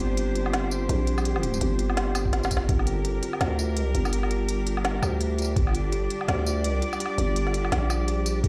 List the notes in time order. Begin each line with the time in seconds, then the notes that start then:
Already playing: G1 G3 C4 D4 G4 C5
0.00 G4
0.17 G4, closed hi-hat
0.35 F4, closed hi-hat
0.46 low woodblock
0.53 snare, closed hi-hat
0.71 F4, tambourine
0.89 A#1 G4, closed hi-hat
1.07 G4, closed hi-hat
1.18 tambourine, low woodblock
1.25 G4, closed hi-hat
1.36 low woodblock
1.43 F4, closed hi-hat
1.54 tambourine
1.61 G1, closed hi-hat
1.79 F4, closed hi-hat
1.90 low woodblock
1.97 G4, snare, closed hi-hat
2.15 closed hi-hat, tambourine, low woodblock
2.26 kick
2.33 G5, snare, closed hi-hat
2.43 snare, tambourine
2.51 kick, closed hi-hat, tambourine
2.57 snare
2.69 G1 G3 D4 G4 A#4, kick, closed hi-hat
2.79 low woodblock
2.87 G4, closed hi-hat
3.05 G4, closed hi-hat
3.23 F4, closed hi-hat
3.33 low woodblock
3.41 D2, snare, closed hi-hat
3.59 F4, tambourine
3.77 C#2 G4, closed hi-hat
3.95 G1 G4, closed hi-hat
4.05 tambourine, low woodblock
4.13 G4, closed hi-hat
4.23 low woodblock
4.30 F4, closed hi-hat
4.49 closed hi-hat
4.66 F4, closed hi-hat
4.77 low woodblock
4.84 G4, snare, closed hi-hat
5.02 D2 G4, tambourine, low woodblock
5.20 G4, closed hi-hat
5.38 F4, closed hi-hat, tambourine
5.42 tambourine
5.44 tambourine
5.56 G1 D5, kick, closed hi-hat
5.67 low woodblock
5.69 low woodblock
5.71 low woodblock
5.73 F4, closed hi-hat, low woodblock
5.92 G4, closed hi-hat
6.10 G4, closed hi-hat
6.21 low woodblock
6.28 D2, snare, closed hi-hat
6.46 F4, tambourine
6.64 C#2, closed hi-hat
6.82 F4, closed hi-hat
6.93 tambourine, low woodblock
7.00 G4, closed hi-hat
7.06 low woodblock
7.18 G1 G4, closed hi-hat
7.36 G4, closed hi-hat
7.47 snare
7.54 F4, closed hi-hat
7.65 low woodblock
7.72 A#1, snare, closed hi-hat
7.90 F4, tambourine, low woodblock
8.08 G4, closed hi-hat
8.26 G4, closed hi-hat, tambourine
8.44 G1 G4 A#4, kick, closed hi-hat